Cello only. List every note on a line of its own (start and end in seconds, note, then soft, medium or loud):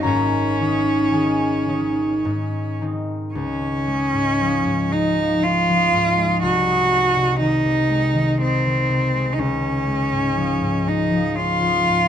0.05 2.76 C#4 medium
3.34 4.93 C#4 medium
4.92 5.44 D#4 medium
5.43 6.42 F4 medium
6.42 7.39 F#4 medium
7.40 8.38 D#4 medium
8.41 9.35 C4 medium
9.33 9.41 D#4 medium
9.40 10.89 C#4 medium
10.88 11.37 D#4 medium
11.35 12.08 F4 medium